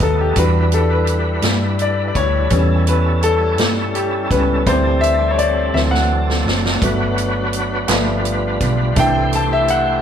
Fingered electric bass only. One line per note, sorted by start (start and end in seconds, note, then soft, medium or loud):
0.00 0.34 D#2 medium
0.36 1.40 E2 medium
1.42 2.11 G2 medium
2.15 2.49 D2 medium
2.51 3.58 E2 loud
3.58 4.26 G2 medium
4.31 4.64 C#2 medium
4.67 5.70 D2 medium
5.74 6.42 D2 medium
6.45 6.78 F#1 medium
6.81 7.85 G1 loud
7.89 8.57 G1 medium
8.61 8.94 B1 medium
8.96 10.01 C2 medium